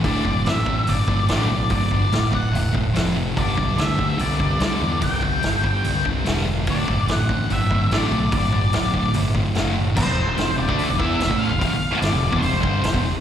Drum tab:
CC |----------------|----------------|----------------|----------------|
HH |o---o---o---o---|o---o---o---o---|o---o---o---o---|o---o---o---o---|
SD |----o-------o---|----o-------o---|----o-------o---|----o-------oo--|
BD |o-o---o---o-----|o-o---o---o-----|o-o---o---o-----|o-o---o---o-----|

CC |----------------|----------------|x---------------|----------------|
HH |o---o---o---o---|o---o---o---o---|----o---o---o---|o---o---o---o---|
SD |----o-------o---|----o-------o---|----o-------o---|----oo------o---|
BD |o-o---o---o-----|o-o---o---o-----|o------o--o--o--|o------o--o--o--|